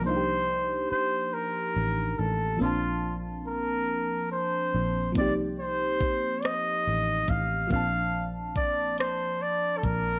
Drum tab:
HH |------|------|x-xx-x|x-xx-x|
SD |------|------|---r--|---r--|
BD |------|------|o-o--o|o-o--o|